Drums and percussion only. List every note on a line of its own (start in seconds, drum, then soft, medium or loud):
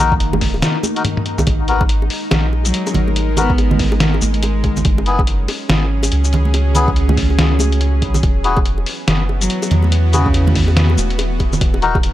0.12 kick loud
0.20 closed hi-hat medium
0.33 high bongo medium
0.33 high conga medium
0.33 low conga loud
0.41 kick medium
0.41 snare soft
0.41 open hi-hat medium
0.54 high bongo medium
0.62 snare loud
0.62 closed hi-hat medium
0.62 shaker medium
0.83 high bongo medium
0.83 high conga medium
0.83 shaker medium
0.96 closed hi-hat medium
1.04 closed hi-hat medium
1.04 high tom medium
1.04 high bongo soft
1.17 high tom medium
1.26 closed hi-hat medium
1.38 mid tom medium
1.38 high bongo medium
1.38 low conga medium
1.38 shaker soft
1.47 kick loud
1.47 closed hi-hat medium
1.47 high bongo medium
1.68 closed hi-hat medium
1.81 kick loud
1.81 high bongo medium
1.89 closed hi-hat medium
2.02 high bongo medium
2.10 open hi-hat medium
2.31 snare loud
2.31 closed hi-hat medium
2.31 high bongo medium
2.53 high bongo medium
2.65 closed hi-hat medium
2.65 shaker medium
2.74 closed hi-hat medium
2.87 high bongo medium
2.87 shaker soft
2.94 closed hi-hat medium
2.94 low conga loud
3.08 high bongo soft
3.08 high conga medium
3.16 closed hi-hat medium
3.37 closed hi-hat medium
3.37 high bongo medium
3.37 low conga medium
3.37 shaker medium
3.50 kick loud
3.58 closed hi-hat medium
3.58 high bongo medium
3.71 high conga medium
3.71 low conga medium
3.79 kick medium
3.79 snare soft
3.79 open hi-hat medium
3.92 high bongo medium
4.00 snare loud
4.00 closed hi-hat medium
4.14 high bongo medium
4.21 high conga loud
4.21 shaker medium
4.34 closed hi-hat soft
4.43 closed hi-hat medium
4.43 high bongo medium
4.64 kick medium
4.64 closed hi-hat medium
4.64 high bongo soft
4.76 low conga medium
4.76 shaker medium
4.85 kick loud
4.85 closed hi-hat medium
4.98 high bongo medium
5.06 closed hi-hat medium
5.19 kick loud
5.19 high bongo medium
5.27 closed hi-hat medium
5.48 open hi-hat medium
5.48 high bongo medium
5.69 snare loud
5.69 closed hi-hat medium
5.69 high bongo soft
6.03 closed hi-hat soft
6.03 high bongo medium
6.03 shaker medium
6.12 closed hi-hat medium
6.24 high bongo soft
6.24 shaker medium
6.33 closed hi-hat medium
6.33 low conga medium
6.45 high conga medium
6.54 closed hi-hat medium
6.54 high bongo medium
6.75 closed hi-hat soft
6.75 high bongo soft
6.75 low conga medium
6.75 shaker medium
6.88 kick loud
6.96 closed hi-hat medium
7.09 high bongo medium
7.09 high conga medium
7.09 low conga medium
7.17 kick medium
7.17 snare soft
7.17 open hi-hat medium
7.30 high bongo medium
7.39 snare loud
7.39 closed hi-hat medium
7.59 high bongo medium
7.59 high conga medium
7.59 shaker medium
7.72 closed hi-hat soft
7.81 closed hi-hat medium
7.81 high bongo soft
8.02 kick medium
8.02 closed hi-hat medium
8.14 high bongo medium
8.14 low conga medium
8.14 shaker medium
8.23 kick loud
8.23 closed hi-hat medium
8.23 high bongo soft
8.44 closed hi-hat soft
8.57 kick loud
8.57 high bongo medium
8.65 closed hi-hat medium
8.78 high bongo soft
8.86 open hi-hat medium
9.08 snare loud
9.08 closed hi-hat medium
9.08 high bongo medium
9.29 high bongo medium
9.41 closed hi-hat soft
9.41 shaker medium
9.50 closed hi-hat medium
9.62 high bongo medium
9.62 shaker medium
9.71 closed hi-hat soft
9.71 low conga medium
9.83 high bongo soft
9.83 high conga medium
9.92 closed hi-hat medium
10.13 closed hi-hat soft
10.13 high bongo medium
10.13 low conga medium
10.13 shaker medium
10.26 kick loud
10.34 closed hi-hat medium
10.34 high bongo medium
10.47 high conga medium
10.47 low conga medium
10.55 kick medium
10.55 snare soft
10.55 open hi-hat medium
10.68 high bongo medium
10.77 snare loud
10.77 closed hi-hat medium
10.90 high bongo medium
10.98 high conga medium
10.98 shaker medium
11.10 closed hi-hat soft
11.19 closed hi-hat medium
11.19 high bongo medium
11.40 kick medium
11.40 closed hi-hat soft
11.40 high bongo soft
11.53 low conga medium
11.53 shaker medium
11.61 kick loud
11.61 closed hi-hat medium
11.74 high bongo medium
11.82 closed hi-hat medium
11.95 kick loud
11.95 high bongo medium
12.03 closed hi-hat medium